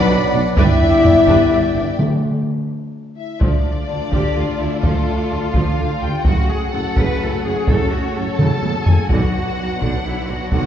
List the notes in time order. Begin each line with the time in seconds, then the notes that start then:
Already playing: F#3 B3 D4 F#4 B4 D5 F#5 B5
0.10 B1 B2 D4 F#4
0.34 B1 B2 D4
0.55 G1 G2 G3 B3 D4 E4 G4 B4 D5 E5 G5, taiko
0.81 taiko low
1.04 G1 G2 D4, taiko low
1.28 G1 G2 D4 B4, taiko
1.51 G1 G2 D4 G4
1.75 G1 G2 D4
1.99 D3
3.17 E4 E5
3.39 D2 F3 A3 D4 F4 D5, taiko
3.88 D2 D3
4.12 D2 F3 G4, taiko
4.36 D2 D3 F4
4.60 D2 D3 E4
4.82 D2 F3 A3 F4 A4, taiko
5.31 D2 D3
5.53 D2 F3 F4 F5, taiko
5.79 D2 D3
6.01 D2 D3 G4 G5
6.23 F#1 F#2 C#3 A3 C#4 F#4 F#5, taiko
6.50 G#4
6.73 F#1 F#2 C#3 A4
6.96 F#1 F#2 C#3 B4, taiko
7.20 F#1 F#2 C#3 A4
7.44 F#1 F#2 C#3 G#4
7.67 F#1 F#2 C#3 C#4 A4 C#5, taiko
7.91 F#4
8.14 F#1 F#2 C#3 A4
8.39 F#1 F#2 C#3 A4 A5, taiko mid
8.63 F#1 F#2 C#3, taiko high
8.85 F#1 F#2 C#3 G#4 G#5, taiko low
9.09 B1 D3 F#3 F#4 F#5, taiko
9.13 B3 D4
9.58 B1 D3
9.81 B1 D3 D4, taiko
10.04 B1 D3 E4
10.28 B1 D3 F#4
10.52 B1 D3 F#4 F#5, taiko